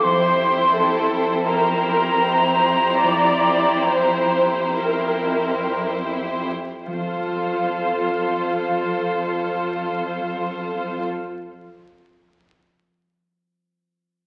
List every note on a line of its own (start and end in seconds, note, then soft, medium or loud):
0.00 3.01 F3 soft
0.00 1.25 C4 soft
0.00 0.97 C5 soft
0.00 1.43 C5 soft
0.00 1.95 C6 soft
0.00 1.12 C6 medium
0.05 6.50 F2 soft
0.05 1.46 E4 soft
0.05 1.46 G4 soft
0.05 0.74 C5 soft
0.51 3.56 E4 soft
0.76 1.47 A4 soft
0.98 4.15 C5 soft
1.45 6.50 E4 soft
1.45 6.50 G4 soft
1.45 2.23 A#4 soft
1.45 6.50 C5 soft
1.45 2.47 E5 soft
1.45 4.74 A#5 medium
1.96 5.46 C6 soft
2.23 3.02 C5 soft
2.48 4.78 E5 soft
3.03 6.85 F3 soft
3.03 3.87 D5 soft
3.57 6.94 E4 soft
3.88 4.80 C5 soft
4.16 8.06 C5 soft
4.80 5.82 A#4 soft
4.80 6.19 E5 soft
5.47 9.37 C6 soft
6.20 6.94 E5 soft
6.86 11.05 F2 soft
6.86 11.05 F3 soft
6.86 11.05 F4 soft
6.86 11.06 A4 soft
6.86 11.04 C5 soft
6.86 11.04 F5 soft
6.93 11.11 C4 soft
7.00 11.19 F4 soft
7.07 11.26 A4 soft
7.14 11.32 F5 soft